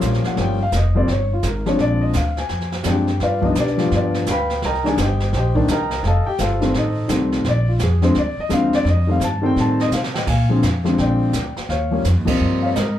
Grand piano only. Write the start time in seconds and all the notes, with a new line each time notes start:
Already playing: F3 G3 A#3 C#4
0.27 F#5
0.36 F3 G3 A#3 C#4
0.41 G5
0.63 F5
0.77 D#5
0.95 F3 G3 A#3 C4 D5
1.12 C#5
1.33 F4
1.48 A#4
1.66 F3 G#3 C4 D4 C#5
1.81 D5
2.01 D#5
2.17 F5
2.38 G#5
2.85 F3 G#3 C4 D4 G4 G5
3.23 F4 B4 D5 F5
3.41 F3 G3 B3 D4 D#5
3.45 D#4
3.59 D4 G4 B4 D5
3.77 F3 G3 B3 F4
3.95 D4 G4 B4 D5
4.31 B4 F5 G5 B5
4.65 A#4 D#5 G5 A#5
4.84 D#3 G3 A#3 D4 G#4 G#5
5.01 G4 C5 D#5 G5
5.37 G4 C5 D#5 G5
5.55 D#3 G3 A#3 D4
5.71 A#4 D#5 G5 A#5
6.07 A4 D#5 F5 A5
6.27 G4 G5
6.40 F4 A4 C5 F5
6.60 D#3 G3 A3 C4
6.77 D#4 A4 C5 D#5
7.08 D#3 G3 A3 C4
7.49 D5
7.69 F4
7.83 G#4
8.02 D3 F3 G#3 C4 C5
8.18 D5
8.40 D#5
8.49 D3 F3 G#3 C4 F5
8.75 D5
8.89 D#5
9.07 D#3 G3 A3 C4
9.11 F5
9.24 A5
9.42 D#3 G3 A3 C4
9.46 G5
9.60 A5
9.81 D#5
9.93 C5 F5
10.15 D#5 G5
10.27 F5 G#5
10.49 D3 F3 G#3 C4
10.84 D3 F3 G#3 C4
10.98 D5 G5
11.69 C#5 F5
11.91 F3 G3 A#3 C#4
12.25 F3 G3 A#3 C4 D#5
12.30 C5
12.63 C#5 F5
12.74 A#4 D#5